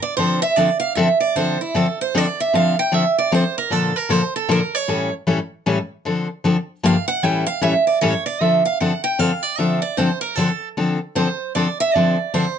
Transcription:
0.02 D5
0.17 D3 F3 C4 D4 A4 C5
0.42 E5
0.56 D3 F3 C4 D4 A4 D5
0.80 F5
0.95 D3 F3 C4 D4 A4 E5
1.20 D5
1.36 D3 F3 C4 D4 A4 C5
1.61 E4
1.74 D3 F3 C4 D4 A4
2.01 C5
2.15 D3 F3 C4 D4 A4 D5
2.40 E5
2.53 D3 F3 C4 D4 A4 F5
2.79 G5
2.92 D3 F3 C4 D4 A4 E5
3.18 D5
3.32 D3 F3 C4 D4 A4 C5
3.58 A#4
3.70 A#2 D3 F3 A#3 D4 A4
3.96 A#4
4.09 A#2 D3 F3 A#3 D4 A4 C5
4.36 A4
4.48 A#2 D3 F3 A#3 D4 A4 A#4
4.75 C#5
4.88 A2 E3 G3 C#4 E4 A4
5.27 A2 E3 G3 C#4 E4 A4
5.66 A2 E3 G3 C#4 E4 A4
6.05 D3 F3 C4 D4 A4
6.44 D3 F3 C4 D4 A4
6.83 G2 D3 F3 A#3 D4 G4 F5
7.08 F#5
7.23 A2 E3 G3 C#4 E4 A4 G5
7.46 F5
7.61 A2 E3 G3 C#4 E4 A4 E5
7.87 D5
8.01 A2 E3 G3 C#4 E4 A4 C#5
8.26 D5
8.41 D3 F3 C4 D4 A4 E5
8.65 F5
8.80 D3 F3 C4 D4 A4 F#5
9.04 G5
9.19 D3 F3 C4 D4 A4 F5
9.43 D5
9.58 D3 F3 C4 D4 A4 E5
9.82 D5
9.97 D3 F3 C4 D4 A4 C5
10.21 A#4
10.36 D3 F3 C4 D4 A4
10.77 D3 F3 C4 D4 A4
11.15 D3 F3 C4 D4 A4 C5
11.55 D3 F3 C4 D4 A4 D5
11.80 E5
11.94 D3 F3 C4 D4 A4 D5
12.34 D3 F3 C4 D4 A4 C5

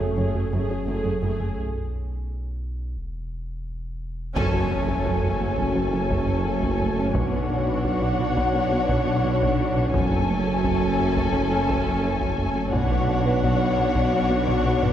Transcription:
Already playing: F#1 A3 C#4 G#4 C#5
0.00 F#2 F#3
0.17 F#1 F#2 F#3 A3 C#4 G#4
0.35 F#2 F#4
0.52 F#1 F#2 F#3 A3 G#4
0.70 F#3 C#4
0.87 F#1 F#2 A3 F#4 G#4
1.04 F#2 F#3
1.22 F#1 F#2 A3 G#4
1.40 F#2 A3
1.58 B1
2.98 E1
4.36 F#1 F#2 F#3 A3 C#4 A4 C#5 G#5, taiko, impact
4.53 F#2 F#4
4.71 F#2 A3
4.88 F#2 F#4
5.05 F#2 F#3, taiko
5.23 F#2
5.40 F#2 F#4
5.57 F#2 F#3, taiko
5.75 F#3
5.93 F#3 C#4
6.10 F#2 F#3, taiko
6.28 F#2
6.45 F#2 F#4
6.63 F#2 F#3, taiko
6.81 F#2 A3
6.98 F#2 A3
7.15 B1 B2 B3 D4 F#4 C#5 F#5, taiko
7.32 B2 B4
7.50 B2 D4
7.67 B2 B4
7.84 B2 B3, taiko
8.02 B2
8.19 B2 B4
8.37 B2 B3, taiko
8.55 B3
8.72 B3 F#4
8.89 B2 B3, taiko
9.07 B2
9.25 B2 B4
9.42 B2 B3, taiko
9.60 B2 D4
9.77 B2 D4
9.94 F#1 F#2 F#3 A3 C#4 A4 C#5 G#5, taiko
10.12 F#2 F#4
10.29 F#2 A3
10.47 F#2 F#4
10.64 F#2 F#3, taiko
10.82 F#2
10.99 F#2 F#4
11.17 F#2 F#3, taiko
11.34 F#3
11.52 F#3 C#4
11.69 F#2 F#3, taiko
11.86 F#2
12.04 F#2 F#4
12.21 F#2 F#3, taiko
12.38 F#2 A3
12.56 F#2 A3
12.73 B1 B2 B3 D4 F#4 C#5 F#5, taiko
12.91 B2 B4
13.08 B2 D4
13.26 B2 B4
13.43 B2 B3, taiko
13.61 B2
13.78 B2 B4
13.95 B2 B3, taiko
14.13 B3
14.30 B3 F#4
14.48 B2 B3, taiko
14.66 B2
14.83 B2 B4, taiko low-mid

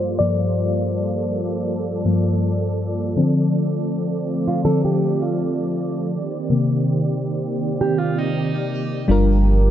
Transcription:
Already playing: G3 A#3 F4 A4 C5 D5
0.19 G2 F3 A#3 D5
2.05 G2 F3 A#3
3.16 D3 F3 A3 C4
4.48 F4
4.65 D3 F3 C4 A4
4.85 G4
5.22 F4
6.13 D#3 A#3 C4 G4
6.50 C3 D#3 A#3
7.81 G4
7.98 F4
8.18 D#4
9.08 G1 F3 G3 A#3 D4 F4 G4 A#4

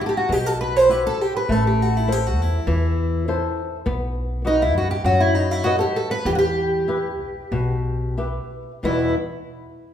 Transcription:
Already playing: E4 F#4 G4
0.00 B1 G4
0.06 G4 A4
0.17 F#4
0.29 B1 B2 G4
0.46 A4
0.61 B4
0.76 C5
0.89 E4 F#4 G4 B4
1.07 A4
1.21 G4
1.36 B4
1.49 A1 A3 A4
1.67 G4
1.82 F#4
1.97 E4
2.08 E4 A4 C5
2.12 G4
2.27 F#4
2.37 E2
2.42 E4
2.67 E2 E3
3.28 E4 A4 C5
3.86 B1 B3
4.45 D#4 F#4 B4 D#5
4.62 E4
4.74 F#2 F#4
4.91 G4
5.04 F#2 F#3 F#4
5.20 E4
5.35 D#4
5.51 E4
5.64 F#4 B4 D#5
5.79 G4 A4
5.96 A4
6.11 B4
6.25 E2 E3 G4
6.35 F#4 G4
6.88 E4 G4 B4
7.20 B1
7.52 B1 B2
8.18 E4 G4 B4
8.83 E2 B2 E3 G3 B3 E4

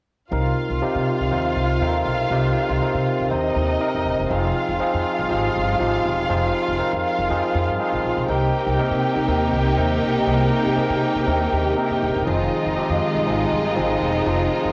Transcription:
0.31 C2 C3 C4 D#4 F4 A#4 F5
0.70 C2
0.82 C3 C4 D#4 G4, muted upright bass stroke
0.95 C3
1.20 C2
1.31 D#2 C3 C4 D#4 C5
1.56 C2
1.81 D#2 C3 C4 D#4 A4
1.89 A#4
2.06 B1
2.30 C2 C3 C4 D#4 G4
2.69 C2
2.81 C3 C4 D#4 A#4, muted upright bass stroke
2.94 C3
3.20 C2
3.30 D#2 C3 C4 D#4 C5 D#5
3.56 D#2
3.79 C3 C4 D#4 A#4
3.95 F2
4.05 D#1
4.20 E1
4.30 F1 F3 C4 D#4 F4 G#4 F5
4.69 F1
4.79 F3 C4 D#4 G#4, muted upright bass stroke
4.94 F2
5.19 G1
5.29 G#1 F3 C4 D#4 G4
5.36 G#4
5.56 G1
5.80 G#1 F3 C4 D#4 G4
5.87 G#4
6.06 E1
6.29 F1 F3 C4 D#4 G#4
6.68 F1
6.78 F3 C4 D#4 A#4, muted upright bass stroke
6.93 F2
7.19 F1
7.30 F2 F3 C4 D#4 G#4
7.55 F2
7.68 G2
7.79 F3 C4 D#4 G#4
7.92 A1
8.04 A#1
8.17 B1
8.28 C2 C3 A#3 C4 D#4 G4 A#4 G5
8.66 C2
8.78 C3 C4 D#4 A#4, muted upright bass stroke
8.91 C3
9.16 C2
9.27 D#2 C3 C4 D#4 A#4
9.53 C2
9.76 D#2 C3 C4 D#4 A#4
10.02 B1
10.26 C2 C3 C4 D#4 G#4
10.34 A#4
10.66 C2
10.76 C3 C4 D#4 G#4, muted upright bass stroke
10.83 A#4
10.90 C3
11.15 C2
11.26 D#2 C3 C4 D4 A#4
11.33 D#4
11.52 D#2
11.76 C3 C4 D#4 A#4
11.90 F2
12.02 D#1
12.15 E1
12.25 F1 D#3 F3 G#3 C4 D#4 F4 G#4 D#5
12.66 F1
12.76 F3 C4 D#4 G4, muted upright bass stroke
12.90 F2
13.15 G1
13.27 G#1 F3 C4 D#4 G#4
13.52 G1
13.76 G#1 F3 C4 D#4 G#4
14.02 E1
14.26 F1 F3 C4 D#4 F4
14.65 F1

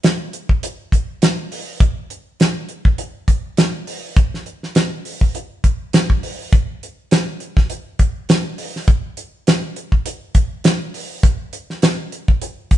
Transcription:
0.03 snare, closed hi-hat
0.33 closed hi-hat
0.49 kick
0.63 closed hi-hat
0.92 kick, closed hi-hat
1.22 snare, closed hi-hat
1.52 open hi-hat
1.80 kick, closed hi-hat
2.10 closed hi-hat
2.40 snare, closed hi-hat
2.69 closed hi-hat
2.85 kick
2.98 closed hi-hat
3.28 kick, closed hi-hat
3.57 snare, closed hi-hat
3.87 open hi-hat
4.17 kick, closed hi-hat
4.34 snare
4.46 closed hi-hat
4.63 snare
4.75 snare, closed hi-hat
5.05 open hi-hat
5.21 kick
5.35 closed hi-hat
5.64 kick, closed hi-hat
5.93 snare, closed hi-hat
6.10 kick
6.23 open hi-hat
6.53 kick, closed hi-hat
6.83 closed hi-hat
7.11 snare, closed hi-hat
7.40 closed hi-hat
7.57 kick, snare
7.70 closed hi-hat
7.99 kick, closed hi-hat
8.29 snare, closed hi-hat
8.58 open hi-hat
8.76 snare
8.88 kick, closed hi-hat
9.17 closed hi-hat
9.47 snare, closed hi-hat
9.76 closed hi-hat
9.92 kick
10.06 closed hi-hat
10.35 kick, closed hi-hat
10.64 snare, closed hi-hat
10.94 open hi-hat
11.23 kick, closed hi-hat
11.53 closed hi-hat
11.70 snare
11.82 snare, closed hi-hat
12.12 closed hi-hat
12.28 kick
12.42 closed hi-hat
12.71 kick, closed hi-hat

